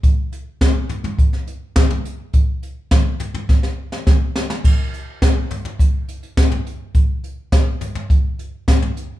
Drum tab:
CC |----------------|----------------|x---------------|----------------|
HH |x-x-x-xxx-x-x-x-|x-x-x-x---------|--x-x-x-x-xxx-x-|x-x-x-x-x-x-x-x-|
SD |----o----o--o---|----o---oo-oo-oo|----o-------o---|----o-------o---|
FT |------oo-----o--|------oo--------|------oo-----o--|------oo-----o--|
BD |o---o---o---o---|o---o---o---o---|o---o---o---o---|o---o---o---o---|